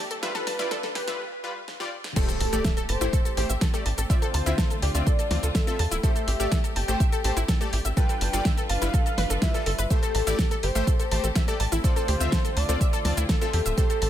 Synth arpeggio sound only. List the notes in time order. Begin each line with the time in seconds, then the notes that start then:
0.11 A4
0.23 E5
0.35 A4
0.47 A5
0.59 E4
0.71 A4
0.83 A4
0.95 G4
1.08 E5
2.16 A4
2.29 A4
2.40 A5
2.53 A4
2.65 E5
2.77 A4
2.89 A5
3.01 E4
3.13 A4
3.25 A4
3.37 G4
3.49 E5
3.61 A4
3.74 A4
3.86 A5
3.98 A4
4.10 E5
4.22 A4
4.34 A5
4.46 E4
4.58 A4
4.70 A4
4.82 G4
4.95 E5
5.07 A4
5.19 A4
5.31 A5
5.43 A4
5.55 E5
5.67 A4
5.79 A5
5.91 E4
6.03 A4
6.16 A4
6.28 G4
6.40 E5
6.52 A4
6.64 A4
6.76 A5
6.88 A4
7.00 E5
7.12 A4
7.24 A5
7.37 E4
7.49 A4
7.61 A4
7.73 G4
7.85 E5
7.97 A4
8.09 A4
8.21 A5
8.33 A4
8.45 E5
8.58 A4
8.70 A5
8.82 E4
8.94 A4
9.06 A4
9.18 B4
9.30 A4
9.42 E4
9.54 A4
9.66 A4
9.79 B4
9.90 E5
10.03 A4
10.15 A5
10.27 E4
10.39 A4
10.51 A4
10.63 G4
10.75 E5
10.87 A4
11.00 A4
11.12 A5
11.24 A4
11.36 E5
11.48 A4
11.60 A5
11.72 E4
11.84 A4
11.96 A4
12.08 G4
12.20 E5
12.32 A4
12.45 A4
12.57 A5
12.69 A4
12.81 E5
12.93 A4
13.05 A5
13.17 E4
13.29 A4
13.41 A4
13.53 G4
13.66 E5
13.78 A4
13.90 A4
14.02 A5